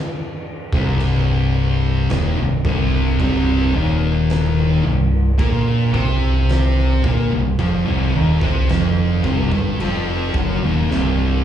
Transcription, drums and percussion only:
0, 0, Header, 1, 2, 480
1, 0, Start_track
1, 0, Key_signature, -3, "minor"
1, 0, Tempo, 1098901
1, 1396, Time_signature, 4, 2, 24, 8
1, 4998, End_track
2, 0, Start_track
2, 0, Title_t, "Drums"
2, 317, Note_on_c, 9, 36, 118
2, 361, Note_off_c, 9, 36, 0
2, 438, Note_on_c, 9, 49, 62
2, 481, Note_off_c, 9, 49, 0
2, 916, Note_on_c, 9, 49, 60
2, 923, Note_on_c, 9, 38, 113
2, 960, Note_off_c, 9, 49, 0
2, 967, Note_off_c, 9, 38, 0
2, 1156, Note_on_c, 9, 36, 113
2, 1200, Note_off_c, 9, 36, 0
2, 1396, Note_on_c, 9, 36, 106
2, 1398, Note_on_c, 9, 49, 54
2, 1440, Note_off_c, 9, 36, 0
2, 1442, Note_off_c, 9, 49, 0
2, 1877, Note_on_c, 9, 49, 57
2, 1884, Note_on_c, 9, 38, 114
2, 1921, Note_off_c, 9, 49, 0
2, 1928, Note_off_c, 9, 38, 0
2, 2355, Note_on_c, 9, 36, 112
2, 2355, Note_on_c, 9, 49, 65
2, 2399, Note_off_c, 9, 36, 0
2, 2399, Note_off_c, 9, 49, 0
2, 2595, Note_on_c, 9, 36, 106
2, 2639, Note_off_c, 9, 36, 0
2, 2836, Note_on_c, 9, 49, 61
2, 2842, Note_on_c, 9, 38, 114
2, 2879, Note_off_c, 9, 49, 0
2, 2886, Note_off_c, 9, 38, 0
2, 3075, Note_on_c, 9, 36, 109
2, 3119, Note_off_c, 9, 36, 0
2, 3314, Note_on_c, 9, 49, 62
2, 3315, Note_on_c, 9, 36, 105
2, 3358, Note_off_c, 9, 49, 0
2, 3359, Note_off_c, 9, 36, 0
2, 3675, Note_on_c, 9, 36, 100
2, 3719, Note_off_c, 9, 36, 0
2, 3797, Note_on_c, 9, 49, 61
2, 3803, Note_on_c, 9, 38, 103
2, 3840, Note_off_c, 9, 49, 0
2, 3847, Note_off_c, 9, 38, 0
2, 4037, Note_on_c, 9, 36, 105
2, 4080, Note_off_c, 9, 36, 0
2, 4157, Note_on_c, 9, 36, 112
2, 4200, Note_off_c, 9, 36, 0
2, 4281, Note_on_c, 9, 49, 69
2, 4324, Note_off_c, 9, 49, 0
2, 4517, Note_on_c, 9, 36, 105
2, 4561, Note_off_c, 9, 36, 0
2, 4765, Note_on_c, 9, 38, 62
2, 4809, Note_off_c, 9, 38, 0
2, 4998, End_track
0, 0, End_of_file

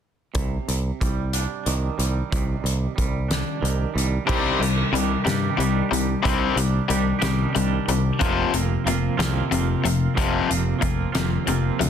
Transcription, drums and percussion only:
0, 0, Header, 1, 2, 480
1, 0, Start_track
1, 0, Key_signature, -3, "minor"
1, 0, Tempo, 655022
1, 252, Time_signature, 6, 3, 24, 8
1, 8718, End_track
2, 0, Start_track
2, 0, Title_t, "Drums"
2, 255, Note_on_c, 9, 42, 69
2, 259, Note_on_c, 9, 36, 96
2, 328, Note_off_c, 9, 42, 0
2, 332, Note_off_c, 9, 36, 0
2, 503, Note_on_c, 9, 42, 53
2, 576, Note_off_c, 9, 42, 0
2, 742, Note_on_c, 9, 36, 65
2, 746, Note_on_c, 9, 42, 54
2, 816, Note_off_c, 9, 36, 0
2, 819, Note_off_c, 9, 42, 0
2, 977, Note_on_c, 9, 42, 77
2, 1051, Note_off_c, 9, 42, 0
2, 1219, Note_on_c, 9, 42, 59
2, 1292, Note_off_c, 9, 42, 0
2, 1462, Note_on_c, 9, 42, 56
2, 1535, Note_off_c, 9, 42, 0
2, 1703, Note_on_c, 9, 36, 95
2, 1704, Note_on_c, 9, 42, 72
2, 1777, Note_off_c, 9, 36, 0
2, 1777, Note_off_c, 9, 42, 0
2, 1949, Note_on_c, 9, 42, 53
2, 2022, Note_off_c, 9, 42, 0
2, 2184, Note_on_c, 9, 36, 65
2, 2187, Note_on_c, 9, 42, 53
2, 2258, Note_off_c, 9, 36, 0
2, 2260, Note_off_c, 9, 42, 0
2, 2423, Note_on_c, 9, 42, 79
2, 2426, Note_on_c, 9, 38, 110
2, 2497, Note_off_c, 9, 42, 0
2, 2500, Note_off_c, 9, 38, 0
2, 2674, Note_on_c, 9, 42, 56
2, 2747, Note_off_c, 9, 42, 0
2, 2915, Note_on_c, 9, 42, 57
2, 2988, Note_off_c, 9, 42, 0
2, 3144, Note_on_c, 9, 36, 100
2, 3146, Note_on_c, 9, 49, 81
2, 3218, Note_off_c, 9, 36, 0
2, 3219, Note_off_c, 9, 49, 0
2, 3390, Note_on_c, 9, 42, 56
2, 3463, Note_off_c, 9, 42, 0
2, 3628, Note_on_c, 9, 42, 50
2, 3701, Note_off_c, 9, 42, 0
2, 3860, Note_on_c, 9, 42, 84
2, 3863, Note_on_c, 9, 38, 106
2, 3933, Note_off_c, 9, 42, 0
2, 3936, Note_off_c, 9, 38, 0
2, 4105, Note_on_c, 9, 42, 61
2, 4178, Note_off_c, 9, 42, 0
2, 4347, Note_on_c, 9, 42, 58
2, 4420, Note_off_c, 9, 42, 0
2, 4582, Note_on_c, 9, 36, 93
2, 4584, Note_on_c, 9, 42, 78
2, 4655, Note_off_c, 9, 36, 0
2, 4657, Note_off_c, 9, 42, 0
2, 4817, Note_on_c, 9, 42, 61
2, 4890, Note_off_c, 9, 42, 0
2, 5057, Note_on_c, 9, 42, 59
2, 5130, Note_off_c, 9, 42, 0
2, 5290, Note_on_c, 9, 42, 86
2, 5293, Note_on_c, 9, 38, 106
2, 5364, Note_off_c, 9, 42, 0
2, 5367, Note_off_c, 9, 38, 0
2, 5537, Note_on_c, 9, 42, 61
2, 5611, Note_off_c, 9, 42, 0
2, 5778, Note_on_c, 9, 42, 60
2, 5852, Note_off_c, 9, 42, 0
2, 6015, Note_on_c, 9, 42, 74
2, 6019, Note_on_c, 9, 36, 102
2, 6089, Note_off_c, 9, 42, 0
2, 6092, Note_off_c, 9, 36, 0
2, 6256, Note_on_c, 9, 42, 61
2, 6329, Note_off_c, 9, 42, 0
2, 6499, Note_on_c, 9, 42, 52
2, 6573, Note_off_c, 9, 42, 0
2, 6742, Note_on_c, 9, 42, 79
2, 6745, Note_on_c, 9, 38, 102
2, 6815, Note_off_c, 9, 42, 0
2, 6818, Note_off_c, 9, 38, 0
2, 6977, Note_on_c, 9, 42, 57
2, 7051, Note_off_c, 9, 42, 0
2, 7221, Note_on_c, 9, 42, 54
2, 7294, Note_off_c, 9, 42, 0
2, 7456, Note_on_c, 9, 36, 97
2, 7458, Note_on_c, 9, 42, 75
2, 7530, Note_off_c, 9, 36, 0
2, 7531, Note_off_c, 9, 42, 0
2, 7700, Note_on_c, 9, 42, 59
2, 7773, Note_off_c, 9, 42, 0
2, 7930, Note_on_c, 9, 42, 55
2, 7932, Note_on_c, 9, 36, 71
2, 8003, Note_off_c, 9, 42, 0
2, 8006, Note_off_c, 9, 36, 0
2, 8169, Note_on_c, 9, 42, 80
2, 8172, Note_on_c, 9, 38, 107
2, 8242, Note_off_c, 9, 42, 0
2, 8245, Note_off_c, 9, 38, 0
2, 8408, Note_on_c, 9, 42, 59
2, 8481, Note_off_c, 9, 42, 0
2, 8654, Note_on_c, 9, 42, 60
2, 8718, Note_off_c, 9, 42, 0
2, 8718, End_track
0, 0, End_of_file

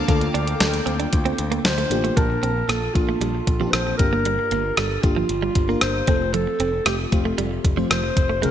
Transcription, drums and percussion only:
0, 0, Header, 1, 2, 480
1, 0, Start_track
1, 0, Key_signature, -2, "major"
1, 0, Tempo, 521739
1, 76, Time_signature, 4, 2, 24, 8
1, 7828, End_track
2, 0, Start_track
2, 0, Title_t, "Drums"
2, 78, Note_on_c, 9, 36, 106
2, 78, Note_on_c, 9, 42, 80
2, 170, Note_off_c, 9, 36, 0
2, 170, Note_off_c, 9, 42, 0
2, 196, Note_on_c, 9, 42, 46
2, 288, Note_off_c, 9, 42, 0
2, 321, Note_on_c, 9, 42, 71
2, 413, Note_off_c, 9, 42, 0
2, 437, Note_on_c, 9, 42, 54
2, 529, Note_off_c, 9, 42, 0
2, 556, Note_on_c, 9, 42, 94
2, 557, Note_on_c, 9, 38, 91
2, 648, Note_off_c, 9, 42, 0
2, 649, Note_off_c, 9, 38, 0
2, 677, Note_on_c, 9, 42, 54
2, 769, Note_off_c, 9, 42, 0
2, 799, Note_on_c, 9, 42, 62
2, 891, Note_off_c, 9, 42, 0
2, 917, Note_on_c, 9, 42, 49
2, 1009, Note_off_c, 9, 42, 0
2, 1036, Note_on_c, 9, 42, 79
2, 1040, Note_on_c, 9, 36, 86
2, 1128, Note_off_c, 9, 42, 0
2, 1132, Note_off_c, 9, 36, 0
2, 1156, Note_on_c, 9, 42, 47
2, 1248, Note_off_c, 9, 42, 0
2, 1273, Note_on_c, 9, 42, 76
2, 1365, Note_off_c, 9, 42, 0
2, 1396, Note_on_c, 9, 42, 46
2, 1488, Note_off_c, 9, 42, 0
2, 1517, Note_on_c, 9, 38, 97
2, 1518, Note_on_c, 9, 42, 94
2, 1609, Note_off_c, 9, 38, 0
2, 1610, Note_off_c, 9, 42, 0
2, 1639, Note_on_c, 9, 42, 44
2, 1731, Note_off_c, 9, 42, 0
2, 1757, Note_on_c, 9, 42, 78
2, 1849, Note_off_c, 9, 42, 0
2, 1882, Note_on_c, 9, 42, 52
2, 1974, Note_off_c, 9, 42, 0
2, 1997, Note_on_c, 9, 36, 96
2, 1997, Note_on_c, 9, 42, 75
2, 2089, Note_off_c, 9, 36, 0
2, 2089, Note_off_c, 9, 42, 0
2, 2239, Note_on_c, 9, 42, 63
2, 2331, Note_off_c, 9, 42, 0
2, 2478, Note_on_c, 9, 42, 78
2, 2479, Note_on_c, 9, 37, 80
2, 2570, Note_off_c, 9, 42, 0
2, 2571, Note_off_c, 9, 37, 0
2, 2717, Note_on_c, 9, 36, 84
2, 2718, Note_on_c, 9, 42, 53
2, 2809, Note_off_c, 9, 36, 0
2, 2810, Note_off_c, 9, 42, 0
2, 2957, Note_on_c, 9, 42, 72
2, 3049, Note_off_c, 9, 42, 0
2, 3195, Note_on_c, 9, 36, 79
2, 3195, Note_on_c, 9, 42, 71
2, 3287, Note_off_c, 9, 36, 0
2, 3287, Note_off_c, 9, 42, 0
2, 3434, Note_on_c, 9, 37, 99
2, 3434, Note_on_c, 9, 42, 86
2, 3526, Note_off_c, 9, 37, 0
2, 3526, Note_off_c, 9, 42, 0
2, 3673, Note_on_c, 9, 42, 76
2, 3675, Note_on_c, 9, 36, 87
2, 3765, Note_off_c, 9, 42, 0
2, 3767, Note_off_c, 9, 36, 0
2, 3913, Note_on_c, 9, 42, 72
2, 4005, Note_off_c, 9, 42, 0
2, 4151, Note_on_c, 9, 42, 65
2, 4243, Note_off_c, 9, 42, 0
2, 4391, Note_on_c, 9, 42, 87
2, 4392, Note_on_c, 9, 37, 83
2, 4483, Note_off_c, 9, 42, 0
2, 4484, Note_off_c, 9, 37, 0
2, 4631, Note_on_c, 9, 42, 58
2, 4633, Note_on_c, 9, 36, 84
2, 4723, Note_off_c, 9, 42, 0
2, 4725, Note_off_c, 9, 36, 0
2, 4869, Note_on_c, 9, 42, 70
2, 4961, Note_off_c, 9, 42, 0
2, 5109, Note_on_c, 9, 42, 72
2, 5111, Note_on_c, 9, 36, 75
2, 5201, Note_off_c, 9, 42, 0
2, 5203, Note_off_c, 9, 36, 0
2, 5348, Note_on_c, 9, 37, 97
2, 5349, Note_on_c, 9, 42, 91
2, 5440, Note_off_c, 9, 37, 0
2, 5441, Note_off_c, 9, 42, 0
2, 5588, Note_on_c, 9, 42, 71
2, 5591, Note_on_c, 9, 36, 96
2, 5680, Note_off_c, 9, 42, 0
2, 5683, Note_off_c, 9, 36, 0
2, 5831, Note_on_c, 9, 42, 71
2, 5923, Note_off_c, 9, 42, 0
2, 6070, Note_on_c, 9, 42, 67
2, 6162, Note_off_c, 9, 42, 0
2, 6309, Note_on_c, 9, 42, 82
2, 6311, Note_on_c, 9, 37, 84
2, 6401, Note_off_c, 9, 42, 0
2, 6403, Note_off_c, 9, 37, 0
2, 6553, Note_on_c, 9, 42, 56
2, 6554, Note_on_c, 9, 36, 86
2, 6645, Note_off_c, 9, 42, 0
2, 6646, Note_off_c, 9, 36, 0
2, 6793, Note_on_c, 9, 42, 75
2, 6885, Note_off_c, 9, 42, 0
2, 7033, Note_on_c, 9, 36, 77
2, 7034, Note_on_c, 9, 42, 74
2, 7125, Note_off_c, 9, 36, 0
2, 7126, Note_off_c, 9, 42, 0
2, 7275, Note_on_c, 9, 37, 99
2, 7276, Note_on_c, 9, 42, 92
2, 7367, Note_off_c, 9, 37, 0
2, 7368, Note_off_c, 9, 42, 0
2, 7514, Note_on_c, 9, 36, 85
2, 7514, Note_on_c, 9, 42, 79
2, 7606, Note_off_c, 9, 36, 0
2, 7606, Note_off_c, 9, 42, 0
2, 7757, Note_on_c, 9, 42, 74
2, 7828, Note_off_c, 9, 42, 0
2, 7828, End_track
0, 0, End_of_file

